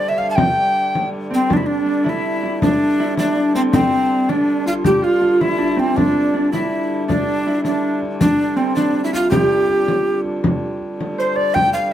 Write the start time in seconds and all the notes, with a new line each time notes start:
Already playing: G2 D3 C5 D5
0.08 E5
0.18 F5, frame drum
0.30 A5
0.35 G5, frame drum
0.57 frame drum
0.95 frame drum
1.30 C4, frame drum
1.49 G2 D3 D4, frame drum
1.53 D4 E4
1.63 D4
1.86 D4
2.04 E4, frame drum
2.09 E4
2.43 E4, frame drum
2.62 D4, frame drum
3.00 E4
3.18 D4, frame drum
3.36 D4
3.54 C4, frame drum
3.72 C4, frame drum
4.28 D4, frame drum
4.66 F4, frame drum
4.84 G4, frame drum
5.02 F4, frame drum
5.21 F4, frame drum
5.40 E4, frame drum
5.58 D4, frame drum
5.76 C4, frame drum
5.94 G2 D3 D4, frame drum
6.34 D4
6.52 E4, frame drum
7.08 D4, frame drum
7.47 E4
7.64 D4, frame drum
8.02 frame drum
8.20 D4, frame drum
8.56 C4
8.75 D4, frame drum
9.04 E4
9.13 F4, frame drum
9.30 G4, frame drum
9.70 frame drum
9.88 frame drum
10.25 frame drum
10.43 G2 D3, frame drum
10.82 frame drum
11.01 frame drum
11.18 C5
11.36 D5, frame drum
11.54 G5, frame drum
11.73 F5, frame drum